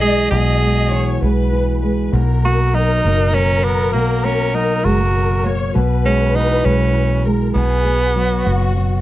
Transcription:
0.00 0.28 B1 loud
0.00 0.30 B2 medium
0.00 0.91 E3 medium
0.00 0.61 G#3 medium
0.00 0.29 G#4 loud
0.00 0.92 D#5 loud
0.31 1.19 B1 loud
0.31 2.11 B2 medium
0.31 1.18 G#4 loud
0.62 1.22 G#3 medium
0.91 1.51 E3 medium
0.91 1.22 C#5 loud
1.22 2.10 B1 medium
1.22 1.82 G#3 medium
1.22 1.79 B4 loud
1.52 2.20 E3 medium
1.82 2.20 G#3 medium
1.82 2.11 B4 medium
2.12 3.01 B1 loud
2.12 3.93 B2 medium
2.12 5.45 A#4 loud
2.43 3.04 A#3 soft
2.43 2.76 F#4 loud
2.74 3.33 F#3 medium
2.74 3.36 D#4 loud
3.05 3.95 F#1 loud
3.05 3.65 A#3 medium
3.34 4.53 F#3 medium
3.34 3.65 C#4 loud
3.64 3.92 B3 medium
3.93 4.82 B1 loud
3.93 5.74 B2 medium
3.93 4.26 A#3 medium
4.24 4.84 A#3 medium
4.24 4.56 C#4 medium
4.54 5.13 F#3 medium
4.54 4.86 D#4 medium
4.84 5.71 F#1 medium
4.84 4.99 G#3 medium
4.84 5.52 F#4 medium
4.99 5.43 A#3 medium
5.14 5.81 F#3 medium
5.44 5.81 A#3 medium
5.44 5.76 C#5 loud
5.75 6.62 B1 loud
5.75 7.54 B2 loud
5.75 7.25 B4 loud
6.04 6.63 G#3 medium
6.04 6.37 C#4 loud
6.35 6.93 E3 medium
6.35 6.67 D#4 loud
6.64 7.52 B1 loud
6.64 7.24 G#3 medium
6.64 7.25 C#4 medium
6.94 7.61 E3 medium
7.25 7.61 G#3 medium
7.25 7.55 A#4 medium
7.54 8.42 B1 loud
7.54 9.02 B2 medium
7.54 8.72 B3 loud
7.54 8.12 G#4 medium
7.85 8.45 B3 medium
8.16 8.76 F#3 medium
8.16 9.02 F#4 loud
8.46 9.02 F#1 medium
8.46 9.02 B3 medium
8.76 9.02 F#3 soft

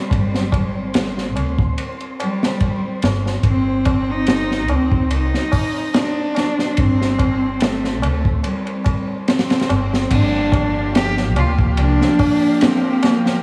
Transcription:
0.00 1.37 G3 medium
0.00 10.13 C4 medium
0.00 10.13 C5 medium
0.10 1.37 G1 medium
0.10 kick loud
0.10 ride medium
0.10 tabla na soft
0.34 snare soft
0.52 kick medium
0.52 ride medium
0.52 tabla na medium
0.75 tabla na soft
0.94 snare loud
0.94 ride medium
0.94 tabla na soft
1.17 snare soft
1.17 tabla na soft
1.36 1.74 D2 medium
1.36 ride medium
1.36 tabla na medium
1.58 kick medium
1.58 tabla na soft
1.78 ride medium
1.78 tabla na soft
2.00 ride soft
2.00 tabla na soft
2.20 2.99 G3 medium
2.20 ride medium
2.20 tabla na medium
2.43 snare medium
2.43 tabla na soft
2.60 kick medium
2.60 ride medium
2.60 tabla na medium
3.02 3.40 G1 medium
3.02 snare medium
3.02 ride medium
3.02 tabla na medium
3.26 snare soft
3.26 tabla na soft
3.43 4.70 G1 medium
3.43 4.12 C4 medium
3.43 kick medium
3.43 ride medium
3.43 tabla na soft
3.85 kick medium
3.85 ride medium
3.85 tabla na medium
4.09 4.73 D#4 loud
4.09 tabla na soft
4.27 snare loud
4.27 ride medium
4.27 tabla na soft
4.49 snare soft
4.49 tabla na soft
4.68 5.11 D2 medium
4.68 5.12 C4 loud
4.68 ride medium
4.68 tabla na medium
4.91 kick medium
4.91 tabla na soft
5.10 5.31 C2 medium
5.10 5.98 D#4 loud
5.10 ride medium
5.10 tabla na soft
5.33 snare soft
5.33 tabla na soft
5.52 kick medium
5.52 open hi-hat medium
5.52 tabla na medium
5.74 tabla na soft
5.94 6.81 D4 loud
5.94 snare loud
5.94 ride medium
5.94 tabla na soft
6.35 snare soft
6.35 ride medium
6.35 tabla na medium
6.57 snare soft
6.57 tabla na soft
6.77 8.03 G1 medium
6.77 7.64 C4 medium
6.77 kick medium
6.77 ride medium
6.77 tabla na soft
6.99 snare soft
6.99 tabla na soft
7.19 kick medium
7.19 ride medium
7.19 tabla na medium
7.41 tabla na soft
7.60 8.45 A3 medium
7.60 snare loud
7.60 ride medium
7.60 tabla na soft
7.83 snare soft
7.83 tabla na soft
8.02 8.40 D2 medium
8.02 ride medium
8.02 tabla na medium
8.25 kick medium
8.25 tabla na soft
8.43 9.24 G3 medium
8.43 ride medium
8.43 tabla na soft
8.65 ride soft
8.65 tabla na soft
8.84 kick medium
8.84 ride medium
8.84 tabla na medium
9.08 tabla na soft
9.28 10.14 C4 medium
9.28 snare medium
9.28 ride medium
9.28 tabla na soft
9.39 snare medium
9.39 ride medium
9.50 snare medium
9.50 ride medium
9.50 tabla na soft
9.59 snare medium
9.59 ride medium
9.69 10.07 G1 medium
9.69 ride medium
9.69 tabla na medium
9.90 snare medium
9.90 tabla na soft
10.10 11.37 G1 medium
10.10 13.43 F3 medium
10.10 13.43 A#3 medium
10.10 10.95 D4 loud
10.10 13.43 F4 medium
10.10 13.43 G4 medium
10.10 13.43 F5 medium
10.10 kick medium
10.10 crash medium
10.10 ride medium
10.10 tabla na medium
10.33 tabla na soft
10.52 kick loud
10.52 ride medium
10.52 tabla na loud
10.75 tabla na soft
10.94 11.14 G4 loud
10.94 snare loud
10.94 ride medium
10.94 tabla na soft
11.17 snare soft
11.36 11.79 D2 medium
11.36 11.57 F4 medium
11.36 ride medium
11.36 tabla na medium
11.58 kick loud
11.58 tabla na soft
11.77 11.98 C2 loud
11.77 12.64 D4 loud
11.77 ride medium
11.77 tabla na soft
11.99 snare soft
11.99 tabla na soft
12.19 kick medium
12.19 open hi-hat medium
12.19 tabla na loud
12.42 tabla na soft
12.61 13.06 C4 medium
12.61 snare loud
12.61 ride medium
12.61 tabla na soft
12.84 tabla na soft
13.03 13.43 A#3 medium
13.03 snare medium
13.03 ride medium
13.03 tabla na loud
13.25 snare soft
13.25 tabla na soft

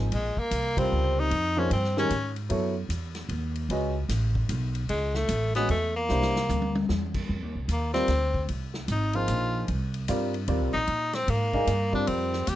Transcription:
0.00 0.10 G#1 medium
0.12 0.35 A#1 medium
0.12 0.41 G#3 medium
0.12 ride medium
0.37 0.80 A#3 medium
0.37 muted upright bass stroke soft
0.37 kick soft
0.51 0.90 C2 medium
0.51 hi-hat pedal medium
0.51 ride medium
0.77 1.28 C3 medium
0.77 1.28 G3 medium
0.77 1.21 C4 medium
0.77 1.28 F4 medium
0.77 1.29 A#4 medium
0.77 1.28 C5 medium
0.77 kick medium
0.77 ride medium
0.92 1.30 C#2 medium
1.20 1.61 D#4 loud
1.31 1.69 F2 medium
1.31 ride medium
1.57 1.69 F3 medium
1.57 1.69 A#3 medium
1.57 1.72 C#4 medium
1.57 1.69 D#4 medium
1.57 1.70 G#4 medium
1.57 1.70 C5 medium
1.71 2.09 G2 medium
1.71 1.95 C4 medium
1.71 ride medium
1.84 snare soft
1.97 2.09 D#3 medium
1.97 2.09 G#3 medium
1.97 2.10 C#4 medium
1.97 2.35 C#4 medium
1.97 2.10 G4 medium
1.97 2.10 A#4 medium
1.97 snare soft
2.10 2.49 G#2 medium
2.10 hi-hat pedal medium
2.10 ride medium
2.36 ride soft
2.49 2.88 F#2 medium
2.49 2.73 F#3 medium
2.49 2.73 B3 medium
2.49 2.73 E4 medium
2.49 2.73 A4 medium
2.49 2.74 C#5 medium
2.49 ride medium
2.89 3.28 E2 medium
2.89 hi-hat pedal medium
2.89 ride medium
3.15 snare soft
3.15 ride soft
3.29 3.68 D#2 medium
3.29 ride medium
3.56 ride soft
3.69 4.08 C#2 medium
3.69 3.93 G#3 medium
3.69 3.93 C#4 medium
3.69 3.94 F#4 medium
3.69 3.93 B4 medium
3.69 3.94 D#5 medium
3.69 ride medium
4.09 4.48 A1 medium
4.09 snare soft
4.09 hi-hat pedal medium
4.09 ride medium
4.35 kick medium
4.49 4.88 B1 medium
4.49 hi-hat pedal medium
4.49 ride medium
4.75 ride soft
4.89 5.28 C#2 medium
4.89 5.17 G#3 medium
4.89 ride medium
5.14 5.55 A3 medium
5.14 snare medium
5.29 5.68 A1 medium
5.29 hi-hat pedal medium
5.29 ride medium
5.55 5.68 G#3 medium
5.55 5.69 B3 loud
5.55 5.69 C#4 medium
5.55 5.69 F#4 medium
5.55 5.69 B4 medium
5.55 5.69 D#5 medium
5.55 snare soft
5.55 ride soft
5.69 6.08 E2 medium
5.69 5.94 A3 medium
5.69 ride medium
5.96 6.86 A#3 medium
6.09 6.48 C2 medium
6.09 6.32 A#3 medium
6.09 6.32 D4 medium
6.09 6.32 E4 medium
6.09 6.33 G4 medium
6.09 6.33 C5 medium
6.09 snare soft
6.22 snare medium
6.36 snare medium
6.49 6.88 D2 medium
6.49 hi-hat pedal medium
6.49 high tom medium
6.62 high tom medium
6.75 high tom medium
6.89 7.28 E2 medium
6.89 snare medium
7.14 kick medium
7.14 crash medium
7.29 7.42 F2 medium
7.42 7.55 D#2 soft
7.55 7.68 C2 medium
7.68 8.07 D#2 medium
7.68 hi-hat pedal medium
7.68 ride medium
7.72 7.93 A#3 medium
7.93 8.07 G3 medium
7.93 8.07 C4 medium
7.93 8.45 C4 medium
7.93 8.07 F4 medium
7.93 8.08 A#4 medium
7.93 8.07 D5 medium
7.93 snare soft
7.93 ride soft
8.08 8.47 D2 medium
8.08 snare soft
8.08 ride medium
8.34 kick soft
8.49 8.88 C2 medium
8.49 ride medium
8.74 snare soft
8.88 9.27 G#1 medium
8.88 9.17 D#4 medium
8.88 hi-hat pedal medium
8.88 ride medium
9.13 9.66 F3 medium
9.13 9.66 A#3 medium
9.13 9.66 D#4 medium
9.13 9.69 F4 loud
9.13 9.66 G#4 soft
9.13 9.66 C5 medium
9.13 ride soft
9.28 9.67 A#1 medium
9.28 hi-hat pedal medium
9.28 ride medium
9.68 10.07 C2 medium
9.68 ride medium
9.94 ride soft
10.08 10.47 G2 medium
10.08 10.32 G3 medium
10.08 10.32 C4 medium
10.08 10.32 F4 medium
10.08 10.32 A#4 medium
10.08 10.32 D5 medium
10.08 hi-hat pedal medium
10.08 ride medium
10.34 ride soft
10.48 10.61 D#2 medium
10.48 10.71 G3 medium
10.48 10.71 C4 medium
10.48 10.72 F4 medium
10.48 10.72 A#4 medium
10.48 10.71 D5 medium
10.48 ride medium
10.61 10.73 C2 medium
10.74 10.87 A#1 medium
10.74 11.16 D#4 medium
10.88 11.27 A#2 medium
10.88 ride medium
11.13 11.31 C4 medium
11.13 snare soft
11.13 ride soft
11.28 11.67 G#2 medium
11.28 11.94 A#3 medium
11.28 ride medium
11.53 11.67 A#3 medium
11.53 11.67 D#4 medium
11.53 11.67 G#4 medium
11.53 11.67 D5 medium
11.53 11.67 F5 medium
11.53 kick soft
11.67 12.06 G2 medium
11.67 hi-hat pedal medium
11.67 ride medium
11.92 12.44 G3 medium
11.92 12.44 C4 medium
11.92 12.10 D4 medium
11.92 12.45 F4 medium
11.92 12.45 A#4 medium
11.92 12.45 D5 medium
11.92 kick soft
12.07 12.47 F2 medium
12.07 12.50 C4 medium
12.07 ride medium
12.33 snare soft
12.47 12.55 D#2 medium
12.47 12.55 G4 medium
12.47 hi-hat pedal medium
12.47 ride medium

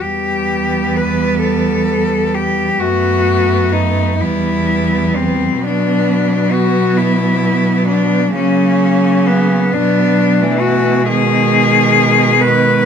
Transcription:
0.01 2.76 E2 soft
0.01 2.83 G3 soft
0.01 2.75 B3 soft
0.01 0.98 G4 soft
0.96 1.40 B4 soft
1.41 2.36 A4 soft
2.35 2.81 G4 soft
2.80 4.22 F#2 soft
2.80 4.20 A3 soft
2.80 4.17 B3 soft
2.80 3.74 F#4 medium
3.72 4.22 D#4 soft
4.20 5.61 E2 soft
4.20 5.59 G3 soft
4.20 5.58 B3 soft
4.20 5.17 E4 soft
5.16 5.65 C4 soft
5.60 8.31 B2 soft
5.60 8.31 F#3 soft
5.60 8.30 B3 soft
5.64 6.54 D4 soft
6.52 6.99 F#4 medium
6.98 7.87 E4 medium
7.88 8.33 D4 medium
8.34 9.74 C#3 soft
8.34 9.69 F#3 soft
8.34 9.69 A#3 soft
8.34 9.29 C#4 medium
9.27 9.75 B3 medium
9.72 12.85 B2 soft
9.72 10.43 F#3 soft
9.72 10.42 B3 soft
9.72 10.62 D4 medium
10.40 11.10 E3 soft
10.40 11.05 A3 soft
10.61 11.07 F#4 medium
11.06 12.41 D#3 soft
11.06 12.37 G#3 soft
11.06 12.43 G#4 medium
12.41 12.85 D#3 soft
12.41 12.85 G#3 soft
12.41 12.85 B4 medium

